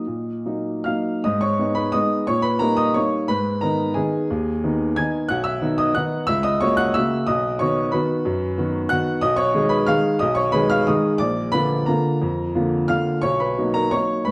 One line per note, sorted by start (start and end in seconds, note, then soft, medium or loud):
0.00 0.83 D#5 medium
0.00 0.86 D#6 medium
0.07 0.45 A#2 medium
0.46 0.82 F#3 soft
0.46 0.83 A#3 soft
0.46 0.83 D#4 medium
0.84 1.21 F#3 soft
0.84 1.21 A#3 soft
0.84 1.22 D#4 medium
0.84 1.22 F5 medium
0.84 1.24 F6 medium
1.24 1.59 G#2 medium
1.24 1.41 D#5 medium
1.24 1.42 D#6 medium
1.41 1.74 C#5 medium
1.41 1.76 C#6 loud
1.59 1.90 G#3 medium
1.59 1.91 B3 medium
1.59 1.91 D#4 medium
1.75 1.93 B4 medium
1.75 1.93 B5 loud
1.92 2.24 G#3 medium
1.92 2.24 B3 medium
1.92 2.25 D#4 medium
1.92 2.25 D#5 medium
1.92 2.27 D#6 loud
2.27 2.60 A#2 medium
2.27 2.43 C#5 medium
2.27 2.44 C#6 loud
2.42 2.59 B4 medium
2.42 2.60 B5 loud
2.59 2.92 G3 medium
2.59 2.92 A#3 medium
2.59 2.93 D#4 medium
2.59 2.77 A#4 medium
2.59 2.77 A#5 loud
2.77 2.94 D#5 medium
2.77 2.95 D#6 loud
2.94 3.27 G3 medium
2.94 3.27 A#3 medium
2.94 3.27 D#4 medium
2.94 3.28 C#5 medium
2.94 3.30 C#6 loud
3.28 3.62 G#2 medium
3.28 3.60 B4 medium
3.28 3.62 B5 loud
3.61 3.93 D#3 medium
3.61 3.93 B3 medium
3.61 3.93 D#4 medium
3.61 3.94 A#4 medium
3.61 3.96 A#5 medium
3.94 4.26 D#3 medium
3.94 4.26 B3 medium
3.94 4.27 D#4 medium
3.94 4.76 G#4 medium
3.94 4.79 G#5 medium
4.30 4.62 D#2 medium
4.64 4.94 D#3 medium
4.64 4.94 B3 medium
4.64 4.95 D#4 medium
4.96 5.27 D#3 medium
4.96 5.27 B3 medium
4.96 5.27 D#4 medium
4.96 5.28 G#5 medium
4.96 5.29 G#6 loud
5.29 5.61 B1 medium
5.29 5.44 F#5 medium
5.29 5.45 F#6 loud
5.44 5.76 E5 medium
5.44 5.78 E6 loud
5.61 5.92 D#3 medium
5.61 5.92 B3 medium
5.61 5.92 D#4 medium
5.78 5.95 D#5 medium
5.78 5.95 D#6 loud
5.95 6.26 D#3 medium
5.95 6.26 B3 medium
5.95 6.26 D#4 medium
5.95 6.26 F#5 medium
5.95 6.28 F#6 loud
6.27 6.60 C#2 medium
6.27 6.43 E5 loud
6.27 6.44 E6 loud
6.43 6.60 D#5 medium
6.43 6.60 D#6 loud
6.61 6.92 C#3 medium
6.61 6.92 A#3 medium
6.61 6.92 F#4 medium
6.61 6.77 C#5 medium
6.61 6.77 C#6 loud
6.77 6.94 F#5 medium
6.77 6.94 F#6 loud
6.94 7.25 C#3 medium
6.94 7.26 A#3 medium
6.94 7.26 F#4 medium
6.94 7.26 E5 medium
6.94 7.27 E6 loud
7.27 7.59 B1 medium
7.27 7.58 D#5 medium
7.27 7.59 D#6 loud
7.59 7.90 D#3 medium
7.59 7.90 B3 medium
7.59 7.90 F#4 medium
7.59 7.91 C#5 medium
7.59 7.92 C#6 loud
7.92 8.22 D#3 medium
7.92 8.22 B3 medium
7.92 8.22 F#4 medium
7.92 8.70 B4 medium
7.92 8.73 B5 medium
8.25 8.57 F#2 medium
8.58 8.88 D#3 medium
8.58 8.88 B3 medium
8.58 8.88 F#4 medium
8.89 9.20 D#3 medium
8.89 9.20 B3 medium
8.89 9.20 F#4 medium
8.89 9.21 F#5 loud
8.89 9.23 F#6 loud
9.21 9.54 B1 medium
9.21 9.37 D#5 loud
9.21 9.38 D#6 loud
9.36 9.69 C#5 medium
9.36 9.70 C#6 loud
9.54 9.85 D#3 medium
9.54 9.85 G#3 medium
9.54 9.85 G#4 medium
9.69 9.87 B4 medium
9.69 9.88 B5 loud
9.86 10.18 D#3 medium
9.86 10.18 G#3 medium
9.86 10.19 G#4 medium
9.86 10.19 F5 loud
9.86 10.20 F6 loud
10.19 10.53 B1 medium
10.19 10.36 D#5 medium
10.19 10.37 D#6 loud
10.35 10.52 C#5 medium
10.35 10.53 C#6 loud
10.52 10.84 D#3 medium
10.52 10.85 G#3 medium
10.52 10.85 G#4 medium
10.52 10.69 B4 medium
10.52 10.70 B5 loud
10.70 10.87 F5 medium
10.70 10.87 F6 loud
10.87 11.17 D#3 medium
10.87 11.18 G#3 medium
10.87 11.18 G#4 medium
10.87 11.18 D#5 medium
10.87 11.20 D#6 loud
11.18 11.52 A#1 medium
11.18 11.50 D5 medium
11.18 11.52 D6 loud
11.52 11.84 D3 medium
11.52 11.84 A#3 medium
11.52 11.84 F4 medium
11.52 11.85 B4 medium
11.52 11.87 B5 loud
11.86 12.18 D3 medium
11.86 12.18 A#3 medium
11.86 12.19 F4 medium
11.86 12.68 A#4 medium
11.86 12.71 A#5 medium
12.22 12.54 F2 medium
12.55 12.86 D3 medium
12.55 12.86 A#3 medium
12.55 12.86 F4 medium
12.88 13.20 D3 medium
12.88 13.20 A#3 medium
12.88 13.20 F4 medium
12.88 13.21 F5 medium
12.88 13.23 F6 loud
13.22 13.56 B1 medium
13.22 13.39 C#5 medium
13.22 13.39 C#6 loud
13.40 13.72 B4 medium
13.40 13.74 B5 medium
13.58 13.89 F#3 medium
13.58 13.90 A#3 medium
13.58 13.90 D#4 medium
13.74 13.91 A#4 medium
13.74 13.92 A#5 loud
13.91 14.23 F#3 medium
13.91 14.24 A#3 medium
13.91 14.24 D#4 medium
13.91 14.24 C#5 medium
13.91 14.26 C#6 loud
14.25 14.31 G#2 medium
14.25 14.31 B4 medium
14.25 14.31 B5 medium